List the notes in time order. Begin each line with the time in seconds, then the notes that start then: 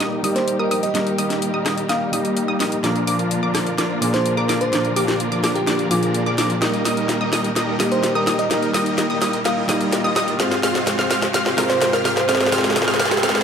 Already playing: A#2 D#3 G3 A#3 D#4 G4 A#4, riser
0.00 G3 A#3 D#4 A#4 D#5 D#6, snare, closed hi-hat
0.23 D#1 G3 A#3 D#4 G4 A#4 D#5 D#6, open hi-hat
0.36 C5, snare, closed hi-hat
0.48 closed hi-hat
0.59 G3 A#3 D#4 A#4 D#5 D#6
0.71 A#1 G3 A#3 D#4 A#4 D#5 D#6, open hi-hat
0.83 D#5, closed hi-hat
0.94 G3 A#3 D#4 A#4 D#5 D#6, snare, closed hi-hat
1.07 closed hi-hat
1.18 D#1 G3 A#3 D#4 A#4 D#5 D#6, open hi-hat
1.30 snare, closed hi-hat
1.42 closed hi-hat
1.54 G3 A#3 D#4 A#4 D#5 D#6
1.66 D#1 G3 A#3 D#4 A#4 D#5 D#6, cross-stick, snare, open hi-hat
1.78 closed hi-hat
1.89 G3 A#3 D#4 A#4 D#5 F5 D#6, snare, closed hi-hat
2.12 D#1 G3 A#3 D#4 G4 A#4 D#5 D#6, open hi-hat
2.25 closed hi-hat
2.37 closed hi-hat
2.48 G3 A#3 D#4 A#4 D#5 D#6
2.60 A#1 G3 A#3 D#4 A#4 D#5 D#6, snare, open hi-hat
2.72 closed hi-hat
2.83 A#2 D3 F3 A#3 D4 F4 A#4 D5 D6, snare, closed hi-hat
2.96 closed hi-hat
3.07 A#1 F3 A#3 D4 A#4 D5 D6, open hi-hat
3.19 closed hi-hat
3.31 closed hi-hat
3.43 F3 A#3 D4 A#4 D5 D6
3.55 A#1 F3 A#3 D4 A#4 D5 D6, cross-stick, snare, open hi-hat
3.67 closed hi-hat
3.78 F3 A#3 D4 A#4 D5 D6, snare, closed hi-hat
4.01 A#1 A#2 F3 A#3 D4 G#4 A#4 D5 D6, open hi-hat
4.14 C5, snare, closed hi-hat
4.26 closed hi-hat
4.37 F3 A#3 D4 A#4 D5 D6
4.49 G#1 F3 A#3 D4 A#4 D5 D6, snare, open hi-hat
4.61 C5, closed hi-hat
4.72 A#2 F3 A#3 D4 A#4 D5 D6, snare, closed hi-hat
4.85 closed hi-hat
4.96 A#1 F3 A#3 D4 G4 A#4 D5 D6, open hi-hat
5.08 G4, snare, closed hi-hat
5.20 closed hi-hat
5.32 F3 A#3 D4 A#4 D5 D6, closed hi-hat
5.44 A#1 F3 A#3 D4 A#4 D5 D6, cross-stick, snare, open hi-hat
5.55 G4, closed hi-hat
5.67 F3 A#3 D4 A#4 D5 D6, snare, closed hi-hat
5.79 closed hi-hat
5.90 A#1 A#2 F3 A#3 D4 F4 G#4 A#4 D5 D6, open hi-hat
6.03 closed hi-hat
6.14 closed hi-hat
6.26 F3 A#3 D4 A#4 D5 D6
6.38 G#1 F3 A#3 D4 A#4 D5 D6, snare, open hi-hat
6.50 closed hi-hat
6.61 D#3 G3 A#3 D#4 G4 A#4 D#5 D#6, snare, closed hi-hat
6.74 closed hi-hat
6.85 D#1 G3 A#3 D#4 A#4 D#5 D#6, snare, open hi-hat
6.97 closed hi-hat
7.09 snare, closed hi-hat
7.21 G3 A#3 D#4 A#4 D#5 D#6
7.33 D#1 G3 A#3 D#4 A#4 D#5 D#6, snare, open hi-hat
7.44 closed hi-hat
7.56 G3 A#3 D#4 A#4 D#5 D#6, snare, closed hi-hat
7.79 G3 A#3 D#4 G4 A#4 D#5 D#6, snare, open hi-hat
7.92 C5, closed hi-hat
8.03 snare, closed hi-hat
8.15 G3 A#3 D#4 A#4 D#5 D#6
8.27 A#1 G3 A#3 D#4 A#4 D#5 D#6, snare, open hi-hat
8.39 D#5, closed hi-hat
8.50 G3 A#3 D#4 A#4 D#5 D#6, snare, closed hi-hat
8.63 closed hi-hat
8.74 D#1 G3 A#3 D#4 A#4 D#5 D#6, snare, open hi-hat
8.86 closed hi-hat
8.98 snare, closed hi-hat
9.10 G3 A#3 D#4 A#4 D#5 D#6
9.22 D#1 G3 A#3 D#4 A#4 D#5 D#6, snare, open hi-hat
9.33 closed hi-hat
9.45 G3 A#3 D#4 A#4 D#5 F5 D#6, snare, closed hi-hat
9.68 G3 A#3 D#4 G4 A#4 D#5 D#6, snare, open hi-hat
9.81 closed hi-hat
9.92 snare, closed hi-hat
10.04 G3 A#3 D#4 A#4 D#5 D#6
10.16 A#1 G3 A#3 D#4 A#4 D#5 D#6, snare, open hi-hat
10.28 closed hi-hat
10.39 G#2 C3 F3 G#3 C4 F4 C5 F5 F6, snare, closed hi-hat
10.51 snare, closed hi-hat
10.63 F1 G#3 C4 F4 C5 F5 F6, snare, open hi-hat
10.75 snare, closed hi-hat
10.87 snare, closed hi-hat
10.99 G#3 C4 F4 C5 F5 F6, snare
11.11 F1 G#3 C4 F4 C5 F5 F6, snare, open hi-hat
11.22 snare, closed hi-hat
11.34 G#3 C4 F4 C5 F5 F6, snare, closed hi-hat
11.46 snare
11.57 G#3 C4 F4 A#4 C5 F5 F6, snare, open hi-hat
11.70 C5, snare, closed hi-hat
11.81 snare, closed hi-hat
11.93 G#3 C4 F4 A#4 C5 F5 F6, snare
12.05 D#1 G#3 C4 F4 C5 F5 F6, snare, open hi-hat
12.17 C5, snare, closed hi-hat
12.27 G#3 C4 F4 C5 F5 F6, snare, closed hi-hat, noise sweep
12.35 snare
12.41 snare, closed hi-hat
12.46 snare
12.52 G#3 C4 F4 G4 C5 F5 F6, snare, open hi-hat
12.58 snare
12.64 G4, snare, closed hi-hat
12.70 snare
12.76 snare, closed hi-hat
12.82 snare
12.88 G#3 C4 F4 C5 F5 F6, snare, closed hi-hat
12.94 snare
12.99 F1 G#3 C4 F4 C5 F5 F6, snare, open hi-hat
13.05 snare
13.11 G4, snare, closed hi-hat
13.17 snare
13.23 G#3 C4 F4 C5 F5 F6, snare, closed hi-hat
13.29 snare
13.35 snare